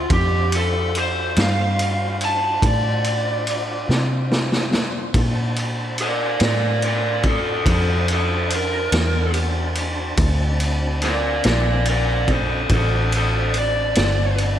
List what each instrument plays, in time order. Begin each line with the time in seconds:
0.09 fingered electric bass F2, tonewheel organ D4 F4 C5, lead electric guitar G4, kick, ride
0.52 ride
0.56 lead electric guitar A4
0.95 lead electric guitar C5, ride
1.36 fingered electric bass G2, lead electric guitar F5, snare, ride
1.79 ride
2.21 ride
2.25 lead electric guitar A5
2.62 fingered electric bass A2, lead electric guitar D5, kick, ride
3.04 ride
3.47 ride
3.89 fingered electric bass C3, snare
4.32 snare
4.52 snare
4.73 snare
5.14 fingered electric bass A#2, tonewheel organ D4 C5 A5, kick, ride
5.56 ride
5.98 lead electric guitar A#4, ride
6.02 lead electric guitar D5
6.40 fingered electric bass A2, snare, ride
6.44 lead electric guitar A#4 D5
6.82 lead electric guitar A#4 D5, ride
7.23 lead electric guitar A4, kick, ride
7.28 lead electric guitar C5
7.66 fingered electric bass F2, lead electric guitar A4 C5, kick, ride
8.08 ride
8.13 lead electric guitar A4 C5
8.50 ride
8.56 lead electric guitar A#4
8.92 fingered electric bass E2, snare, ride
9.34 ride
9.75 ride
10.17 fingered electric bass D2, tonewheel organ C4 D4 A5, kick, ride
10.60 ride
11.02 lead electric guitar A#4 D5, snare, ride
11.44 fingered electric bass A#1, lead electric guitar A#4 D5, snare, ride
11.85 ride
11.90 lead electric guitar A#4 D5
12.28 kick, ride
12.32 lead electric guitar A4 C5
12.69 fingered electric bass A1, kick, ride
12.74 lead electric guitar A4 C5
13.12 ride
13.17 lead electric guitar A4 C5
13.54 ride
13.58 lead electric guitar D5
13.95 fingered electric bass G1, snare, ride
14.38 ride